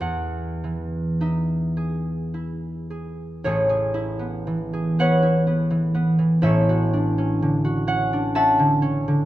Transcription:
0.00 3.47 E2 soft
0.00 2.33 E4 soft
0.00 3.48 F#5 medium
0.00 0.77 G#5 medium
0.64 3.49 E3 soft
1.21 3.48 D#4 soft
1.21 5.11 E5 soft
1.77 2.89 G#4 soft
2.34 3.93 E4 soft
2.90 3.45 G#4 soft
3.44 6.41 A1 soft
3.44 6.41 A2 medium
3.44 3.68 G#4 medium
3.44 6.43 A4 medium
3.44 4.99 C#5 medium
3.69 4.72 G#4 medium
3.94 5.21 E4 medium
4.19 4.98 B3 soft
4.47 5.69 E3 soft
4.73 6.48 G#4 medium
4.99 5.46 B3 medium
4.99 6.49 B4 medium
4.99 6.43 C#5 medium
4.99 7.46 F#5 medium
5.22 9.12 E4 medium
5.47 5.93 B3 soft
5.70 6.17 E3 soft
5.94 6.47 B3 medium
6.19 6.47 E3 medium
6.42 9.25 A1 medium
6.42 9.25 A2 medium
6.42 9.25 A4 medium
6.42 9.25 C#5 medium
6.42 8.34 E5 medium
6.69 7.63 F#4 medium
6.93 8.12 D4 soft
7.18 7.86 C#4 medium
7.42 8.58 D3 medium
7.65 9.25 F#4 medium
7.87 8.34 C#4 medium
7.87 8.35 F#5 loud
8.13 9.25 D4 medium
8.35 8.81 C#4 soft
8.35 9.25 E5 medium
8.35 9.25 F#5 medium
8.35 9.25 A5 loud
8.59 9.07 D3 medium
8.82 9.25 C#4 medium
9.08 9.25 D3 medium

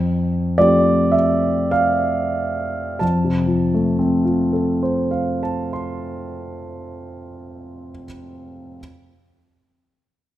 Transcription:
0.00 0.56 F2 soft
0.58 2.97 F3 soft
0.58 2.97 A3 soft
0.58 2.97 C4 soft
0.58 2.98 G4 soft
0.58 1.14 D5 medium
1.12 1.72 E5 medium
1.71 3.00 F5 medium
2.99 7.90 F2 soft
2.99 5.41 A5 soft
3.25 8.06 C3 soft
3.47 8.05 F3 soft
3.74 8.06 A3 soft
3.99 8.05 C4 soft
4.25 8.05 F4 soft
4.53 8.05 A4 soft
4.83 8.06 C5 soft
5.11 8.05 F5 soft
5.43 8.06 A5 soft
5.73 8.05 C6 soft

